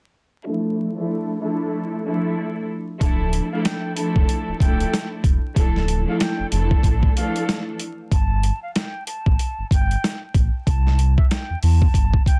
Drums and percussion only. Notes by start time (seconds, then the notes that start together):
3.01 kick, closed hi-hat
3.33 closed hi-hat
3.65 snare, closed hi-hat
3.97 closed hi-hat
4.16 kick
4.29 closed hi-hat
4.60 kick, closed hi-hat
4.80 closed hi-hat
4.94 snare, closed hi-hat
5.24 kick, closed hi-hat
5.56 kick, closed hi-hat
5.76 snare
5.88 closed hi-hat
6.20 snare, closed hi-hat
6.52 closed hi-hat
6.71 kick
6.83 kick, closed hi-hat
7.03 kick
7.17 closed hi-hat
7.36 closed hi-hat
7.49 snare, closed hi-hat
7.79 closed hi-hat
8.11 kick, closed hi-hat
8.43 closed hi-hat
8.76 snare, closed hi-hat
9.07 closed hi-hat
9.26 kick
9.39 closed hi-hat
9.71 kick, closed hi-hat
9.91 closed hi-hat
10.04 snare, closed hi-hat
10.34 kick, closed hi-hat
10.67 kick, closed hi-hat
10.87 snare
10.99 closed hi-hat
11.18 kick
11.31 snare, closed hi-hat
11.63 open hi-hat
11.82 kick
11.94 kick, closed hi-hat
12.14 kick
12.26 kick, closed hi-hat